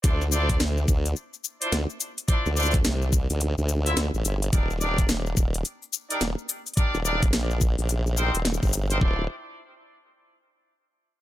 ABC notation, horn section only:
X:1
M:4/4
L:1/16
Q:"Swing 16ths" 1/4=107
K:Dphr
V:1 name="Horn section"
[D=EFcd] z [DEFcd]2 z6 z [DEFcd] z4 | [D=EFcd] z [DEFcd] z8 [EFc=e] z4 | [DEGBd] z [DEGBd]2 z6 z [DEGBd] z4 | [DEGBd] z [DEGBd] z6 z [CEGBc] z4 [CEGBc] |
[D=EFcd]2 z12 z2 |]